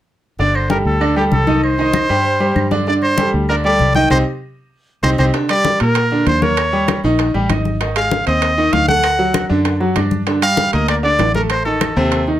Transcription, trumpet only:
0.40 0.57 D5 medium
0.55 0.70 C5 medium
0.71 0.78 A#4 medium
0.86 1.15 A4 medium
1.18 1.24 G4 medium
1.32 1.61 A4 medium
1.64 2.68 C5 loud
2.87 2.94 D5 medium
3.03 3.31 C5 loud
3.49 3.56 A#4 medium
3.64 3.93 D5 loud
3.95 4.10 G5 medium
4.11 4.18 C5 medium
5.03 5.10 C5 loud
5.19 5.26 C5 medium
5.50 5.78 D5 loud
5.82 6.24 A#4 medium
6.28 6.44 C5 loud
6.43 7.04 C#5 medium
7.96 8.25 F5 medium
8.27 8.74 D#5 medium
8.73 8.88 F5 loud
8.88 9.46 F#5 loud
10.43 10.71 F5 loud
10.73 10.88 D#5 medium
10.89 10.96 D5 medium
11.04 11.33 D5 loud
11.35 11.42 A#4 medium
11.50 11.65 C5 medium
11.65 12.23 A4 medium

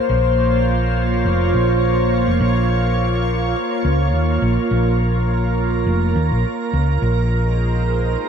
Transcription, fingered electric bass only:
0.10 1.23 A#1 loud
1.25 1.51 F1 medium
1.54 2.24 A#1 medium
2.28 2.39 F1 medium
2.40 3.53 A#1 loud
3.85 4.13 C#2 medium
4.13 4.39 D#2 loud
4.42 4.56 A#1 medium
4.71 5.84 A#1 loud
5.87 6.12 F1 medium
6.16 6.29 D#2 medium
6.32 6.43 A#1 medium
6.73 6.99 C#2 medium
7.02 8.15 A#1 loud

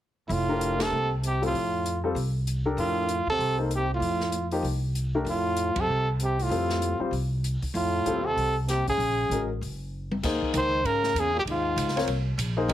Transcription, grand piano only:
0.49 0.77 A3 medium
0.49 0.78 D4 medium
0.49 0.78 G4 medium
0.49 0.78 A#4 medium
0.79 0.90 A3 medium
0.79 0.91 D4 medium
0.79 0.91 G4 medium
0.79 0.91 A#4 medium
1.42 1.53 G3 medium
1.42 1.53 C4 medium
1.42 1.53 F4 medium
1.42 1.53 A4 medium
2.04 2.15 G3 medium
2.04 2.15 C4 medium
2.04 2.15 F4 medium
2.04 2.15 A4 medium
2.66 3.07 D4 medium
2.66 3.06 G4 medium
2.66 3.06 A4 medium
2.66 3.07 A#4 medium
3.58 3.69 A#3 medium
3.58 3.69 D#4 medium
3.58 3.69 A4 medium
3.58 3.69 C5 medium
4.52 4.63 F3 medium
4.52 4.63 A#3 medium
4.52 4.63 D#4 medium
4.52 4.63 G4 medium
5.15 5.25 A3 medium
5.15 5.25 D4 medium
5.15 5.25 G4 medium
5.15 5.25 A#4 medium
6.50 6.96 G3 medium
6.50 6.96 C4 soft
6.50 6.97 F4 soft
6.50 6.97 A4 medium
7.00 7.11 G3 medium
7.00 7.11 C4 medium
7.00 7.11 F4 medium
7.00 7.11 C5 medium
8.06 8.23 G3 medium
8.06 8.23 C4 medium
8.06 8.23 F4 medium
8.06 8.23 A4 medium
9.31 9.47 G#3 soft
9.31 9.47 C#4 soft
9.31 9.48 F#4 soft
9.31 9.48 A#4 medium
10.24 10.69 A#3 medium
10.24 10.70 D#4 medium
10.24 10.70 G#4 medium
10.24 10.70 C5 medium
11.96 12.07 C4 medium
11.96 12.07 F4 medium
11.96 12.07 A#4 medium
11.96 12.07 C#5 medium
12.57 12.73 A#3 medium
12.57 12.73 D#4 medium
12.57 12.73 G#4 medium
12.57 12.73 C5 medium
12.69 12.73 G#3 medium
12.69 12.73 C#4 medium
12.69 12.73 G4 medium
12.69 12.73 A#4 medium

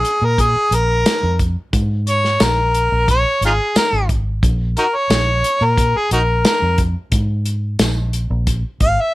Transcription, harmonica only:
0.00 0.26 G#4 medium
0.25 0.42 A#4 medium
0.41 0.76 G#4 medium
0.75 1.39 A#4 medium
2.09 2.45 C#5 medium
2.44 3.08 A#4 medium
3.11 3.42 C#5 medium
3.45 3.52 D#4 medium
3.45 3.53 F4 medium
3.45 3.76 G#4 medium
3.77 4.09 A#4 loud
4.79 4.85 D#4 medium
4.79 4.87 F#4 medium
4.79 4.98 A#4 medium
4.96 5.66 C#5 medium
5.64 5.98 A#4 medium
5.97 6.11 G#4 medium
6.13 6.21 D#4 medium
6.13 6.19 F#4 medium
6.13 6.45 A#4 medium
6.47 6.79 A#4 loud
8.83 9.03 F5 loud
9.01 9.14 E5 medium

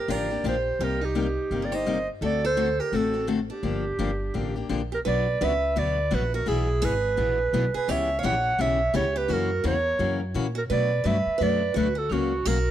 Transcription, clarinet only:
0.00 0.13 A#4 medium
0.12 0.45 D5 medium
0.48 0.85 C5 medium
0.84 1.06 A#4 medium
1.05 1.67 G4 medium
1.65 1.76 D5 medium
1.75 2.09 D#5 medium
2.25 2.43 D5 medium
2.46 2.82 C5 medium
2.80 2.97 A#4 medium
2.96 3.29 A4 medium
3.52 4.67 G4 medium
4.94 5.00 A#4 medium
5.08 5.45 D5 loud
5.44 5.80 E5 loud
5.78 6.16 D5 medium
6.15 6.34 B4 medium
6.35 6.50 A#4 medium
6.48 6.86 G#4 medium
6.85 7.75 B4 loud
7.77 7.92 B4 medium
7.91 8.21 E5 loud
8.20 8.27 F5 medium
8.25 8.63 F#5 loud
8.61 8.95 E5 loud
8.96 9.19 C#5 medium
9.17 9.34 B4 medium
9.33 9.66 A#4 loud
9.67 10.25 C#5 loud
10.58 10.64 A#4 medium
10.72 11.08 D5 loud
11.07 11.44 E5 loud
11.43 11.76 D5 loud
11.77 12.00 B4 medium
11.98 12.14 A4 medium
12.13 12.49 F#4 medium
12.47 12.71 A#4 loud

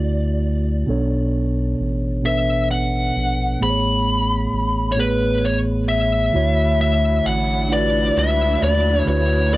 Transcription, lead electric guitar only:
2.26 2.67 E5 medium
2.71 3.64 F#5 medium
3.63 5.39 B5 medium
4.92 4.98 C#5 medium
5.00 5.45 B4 medium
5.45 5.57 C#5 medium
5.89 6.80 E5 loud
6.81 7.26 E5 loud
7.26 7.72 F#5 medium
7.73 8.18 D5 loud
8.19 8.63 E5 medium
8.63 9.08 D5 medium
9.08 9.54 C#5 loud
9.54 9.57 D5 loud

